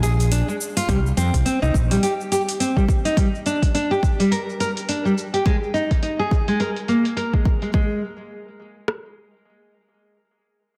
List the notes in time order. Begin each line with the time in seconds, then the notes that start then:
Already playing: A#1
0.03 G#4, open hi-hat, shaker
0.20 open hi-hat, shaker
0.32 D4, open hi-hat, shaker
0.48 G#3, shaker
0.61 shaker
0.77 F4, open hi-hat, shaker
0.89 C2 G3, kick, open hi-hat, shaker
1.06 shaker
1.17 F2 C4, open hi-hat, shaker
1.34 C2, kick, open hi-hat, shaker
1.45 C4, open hi-hat, shaker
1.62 C2 D#4, shaker
1.74 A#1, kick, shaker
1.91 G3, open hi-hat, shaker
2.03 G4, open hi-hat, shaker
2.21 shaker
2.32 G4, open hi-hat, shaker
2.49 open hi-hat, shaker
2.60 C4, open hi-hat, shaker
2.77 G3, kick, shaker
2.88 kick, shaker
3.05 D#4, open hi-hat, shaker
3.17 G3, kick, open hi-hat, shaker
3.35 shaker
3.46 D4, open hi-hat, shaker
3.62 kick, open hi-hat, shaker
3.74 D4, open hi-hat, shaker
3.91 G4, shaker
4.03 kick, shaker
4.20 G3, open hi-hat, shaker
4.31 A#4, open hi-hat, shaker
4.50 shaker
4.60 A#4, open hi-hat, shaker
4.77 open hi-hat, shaker
4.89 D4, open hi-hat, shaker
5.05 G3, shaker
5.18 shaker
5.34 G4, open hi-hat, shaker
5.46 G#3, kick, open hi-hat, shaker
5.63 shaker
5.74 D#4, open hi-hat, shaker
5.91 kick, open hi-hat, shaker
6.03 D#4, open hi-hat, shaker
6.19 G#4, shaker
6.31 kick, shaker
6.48 G#3, open hi-hat, shaker
6.60 A#4, open hi-hat, shaker
6.76 open hi-hat, shaker
6.88 A#3, open hi-hat, shaker
7.05 open hi-hat, shaker
7.17 A#4, open hi-hat, shaker
7.33 G#3, kick, shaker
7.45 kick, shaker
7.62 G#3, open hi-hat, shaker
7.74 G#3, kick
8.88 cross-stick